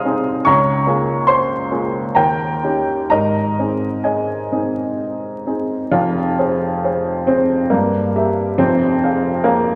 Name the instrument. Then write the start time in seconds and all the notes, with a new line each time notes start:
upright piano
Already playing: C2 C4 D#4 G#4 D#5 F5 G#5 C6 D#6 F6 G#6
0.05 C4 D#4 G#4
0.45 C#2 C#5 A#5 C#6
0.87 A#3 F4 G#4
1.27 C5 C6
1.71 A#3 F4 G#4
2.15 D#2 A#4 G5 A#5
2.63 C#4 D#4 G4
3.10 G#2 A#4 D#5 A#5
3.59 C4 D#4 G#4
4.04 G#4 D#5 G#5
4.52 C4 D#4 G#4
5.46 C4 D#4 G#4
5.91 F1 F2 F4
6.39 G#4 C5
6.84 G#4 C5
7.27 C4 G#4 C5
7.70 G2 A#3
8.16 G4 A#4 E5
8.58 F1 F2 C4
9.03 G#4 F5
9.44 A#3 G#4 F5